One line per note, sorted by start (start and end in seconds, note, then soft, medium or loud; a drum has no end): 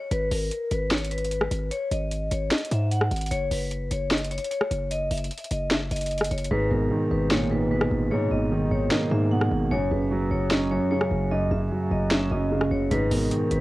0.11 0.30 G#1 loud
0.11 0.27 B4 loud
0.11 closed hi-hat medium
0.31 0.50 G#1 loud
0.31 0.69 A#4 medium
0.31 open hi-hat medium
0.51 closed hi-hat medium
0.71 1.48 G#1 loud
0.71 0.87 B4 medium
0.71 closed hi-hat medium
0.91 1.07 C#5 medium
0.91 snare loud
0.91 closed hi-hat medium
0.98 closed hi-hat medium
1.04 closed hi-hat medium
1.11 1.27 B4 medium
1.11 closed hi-hat medium
1.18 closed hi-hat medium
1.25 closed hi-hat medium
1.31 1.69 B4 medium
1.31 closed hi-hat medium
1.41 cross-stick loud
1.51 1.70 G#1 loud
1.51 closed hi-hat medium
1.71 1.87 C#5 loud
1.71 closed hi-hat medium
1.91 2.30 G#1 loud
1.91 2.29 D#5 medium
1.91 closed hi-hat medium
2.11 closed hi-hat medium
2.31 2.50 G#1 loud
2.31 2.47 C#5 medium
2.31 closed hi-hat medium
2.51 2.67 D#5 medium
2.51 snare loud
2.51 closed hi-hat medium
2.58 closed hi-hat medium
2.65 closed hi-hat medium
2.71 3.10 G#2 loud
2.71 2.87 E5 medium
2.71 closed hi-hat medium
2.91 3.29 F#5 medium
2.91 closed hi-hat medium
3.01 cross-stick loud
3.11 3.30 G#1 loud
3.11 closed hi-hat soft
3.16 closed hi-hat medium
3.21 closed hi-hat medium
3.26 closed hi-hat medium
3.31 3.50 F#1 loud
3.31 3.47 C#5 loud
3.31 closed hi-hat medium
3.51 3.90 F#1 loud
3.51 3.89 B4 medium
3.51 open hi-hat medium
3.71 closed hi-hat medium
3.91 4.39 F#1 loud
3.91 4.07 C#5 medium
3.91 closed hi-hat medium
4.11 snare loud
4.11 closed hi-hat medium
4.18 closed hi-hat medium
4.24 closed hi-hat medium
4.31 4.47 C#5 medium
4.31 closed hi-hat medium
4.38 closed hi-hat medium
4.44 closed hi-hat medium
4.51 4.89 C#5 medium
4.51 closed hi-hat medium
4.61 cross-stick loud
4.71 5.10 F#1 loud
4.71 closed hi-hat medium
4.91 5.07 D#5 loud
4.91 closed hi-hat medium
5.11 5.30 F#1 loud
5.11 5.49 E5 medium
5.11 closed hi-hat medium
5.11 open hi-hat medium
5.18 closed hi-hat medium
5.24 closed hi-hat medium
5.31 closed hi-hat medium
5.38 closed hi-hat medium
5.44 closed hi-hat medium
5.51 5.90 F#1 loud
5.51 5.67 D#5 medium
5.51 closed hi-hat medium
5.71 5.87 E5 medium
5.71 snare loud
5.71 closed hi-hat medium
5.91 6.30 F#1 loud
5.91 6.29 D#5 medium
5.91 closed hi-hat medium
5.96 closed hi-hat medium
6.01 closed hi-hat medium
6.06 closed hi-hat medium
6.11 closed hi-hat soft
6.18 cross-stick medium
6.18 closed hi-hat medium
6.24 closed hi-hat medium
6.31 6.50 F#1 loud
6.31 6.47 C#5 medium
6.31 closed hi-hat soft
6.38 closed hi-hat medium
6.45 closed hi-hat medium
6.51 6.70 G#1 loud
6.51 7.49 G#2 loud
6.51 6.67 B4 loud
6.71 6.90 G#1 loud
6.71 7.69 B2 medium
6.71 7.09 A#4 medium
6.91 7.91 D#3 medium
7.11 7.88 G#1 loud
7.11 7.27 B4 medium
7.31 8.31 A#2 medium
7.31 7.47 C#5 medium
7.31 snare loud
7.51 8.10 G#2 medium
7.51 7.67 B4 medium
7.71 8.30 B2 medium
7.71 8.09 B4 medium
7.81 cross-stick loud
7.91 8.10 G#1 loud
8.11 9.10 G#2 medium
8.11 8.27 C#5 loud
8.31 8.70 G#1 loud
8.31 9.30 B2 medium
8.31 8.69 D#5 medium
8.52 9.51 D#3 medium
8.71 8.90 G#1 loud
8.71 8.87 C#5 medium
8.91 9.71 A#3 medium
8.91 9.07 D#5 medium
8.91 snare loud
9.11 9.50 G#2 loud
9.11 9.71 G#2 medium
9.11 9.27 E5 medium
9.31 9.71 B2 medium
9.31 9.69 F#5 medium
9.41 cross-stick medium
9.51 9.70 G#1 loud
9.71 9.90 F#1 loud
9.71 10.70 F#2 medium
9.71 9.87 C#5 loud
9.91 10.30 F#1 loud
9.91 10.90 C#3 medium
9.91 10.29 B4 medium
10.11 11.11 F#3 medium
10.31 10.79 F#1 loud
10.31 10.47 C#5 medium
10.51 11.51 C#4 medium
10.51 10.67 D#5 medium
10.51 snare loud
10.71 11.29 F#2 medium
10.71 10.87 C#5 medium
10.91 11.50 C#3 medium
10.91 11.29 C#5 medium
11.01 cross-stick medium
11.11 11.50 F#1 loud
11.31 12.30 F#2 medium
11.31 11.47 D#5 loud
11.51 11.70 F#1 loud
11.51 12.50 C#3 medium
11.51 11.89 E5 medium
11.71 12.71 F#3 medium
11.91 12.30 F#1 loud
11.91 12.07 D#5 medium
12.11 12.91 C#4 medium
12.11 12.27 E5 medium
12.11 snare loud
12.31 12.70 F#1 loud
12.31 12.91 F#2 medium
12.31 12.69 D#5 medium
12.51 12.91 C#3 medium
12.61 cross-stick medium
12.71 12.90 F#1 loud
12.71 12.87 C#5 medium
12.91 13.10 G#1 loud
12.91 13.61 G#2 loud
12.91 13.07 B4 loud
12.91 closed hi-hat medium
13.11 13.30 G#1 loud
13.11 13.61 B2 medium
13.11 13.49 A#4 medium
13.11 open hi-hat medium
13.31 13.61 D#3 medium
13.31 closed hi-hat medium
13.51 13.61 G#1 loud
13.51 13.61 B4 medium
13.51 closed hi-hat medium